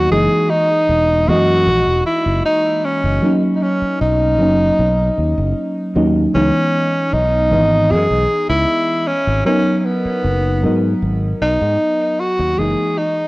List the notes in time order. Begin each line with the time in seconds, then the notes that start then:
Already playing: F#3 B3 D#4 F#4 A#4
0.10 F#1 E3 G#3 A#3 D#4 G#4
0.50 D#4
0.89 E1
1.27 F#2 E3 G#3 A#3 F#4 D#5
1.67 A#1
1.87 E1
2.06 E4
2.26 F#1
2.46 D#4
2.85 C#4
3.04 F#1
3.22 F#3 A#3 C#4 D#4
3.55 D#4
3.62 C#4
3.82 muted fingered electric bass stroke
4.01 B1 D#4
4.39 F#1 F#3 A#3 C#4 D#4
4.79 B1
5.18 D#2
5.38 F#1
5.95 D#2 F#3 A#3 C#4 D#4
6.33 C#2 E3 G#3 B3 C#4 D#4
7.13 B1 D#4
7.50 G#1 E3 G#3 B3 D#5
7.91 F#2 G#4
8.10 B1
8.49 C#2 E4
9.08 C#4
9.27 G#1
9.45 F#3 B3 C#4 D#4 A#4
9.78 C#4
9.85 B3
10.05 muted fingered electric bass stroke
10.24 F#1
10.62 G#2 F#3 B3 D#4 A#4
11.02 G#1
11.41 B1 D#4
11.61 G#2
12.19 F#4
12.39 D#2
12.57 F#1 E3 G#3 A#3 D#4 G#4
12.98 D#4